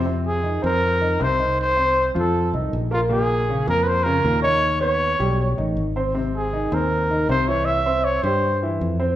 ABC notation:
X:1
M:4/4
L:1/16
Q:1/4=158
K:Cphr
V:1 name="Trumpet"
z2 A4 B6 c4 | c6 =A4 z4 F2 | A6 B3/2 =B/2 c2 _B4 d2- | d2 d8 z6 |
z2 A4 B6 c2 d2 | =e4 d2 c4 z6 |]
V:2 name="Grand piano"
[C,C]4 [E,E]2 [Cc]4 [E,E]2 [C,C]2 [E,E]2- | [E,E]2 [Cc]4 [F,F]4 [E,E]4 [B,B]2 | [B,,B,]4 [D,D]2 [B,B]4 [D,D]2 [B,,B,]2 [E,E]2- | [E,E]2 [=B,=B]4 [G,G]4 [E,E]4 [Cc]2 |
[C,C]4 [E,E]2 [Cc]4 [E,E]2 [C,C]2 [=E,=E]2- | [=E,=E]2 [Cc]4 [G,G]4 [E,E]4 [Cc]2 |]
V:3 name="Fingered electric bass" clef=bass
F,,6 F,,6 C,,4- | C,,6 F,,4 C,,2 B,,,4- | B,,,6 F,,6 E,,4- | E,,6 =B,,,4 =A,,,2 _A,,,4- |
A,,,6 E,,6 C,,4- | C,,6 G,,6 F,,4 |]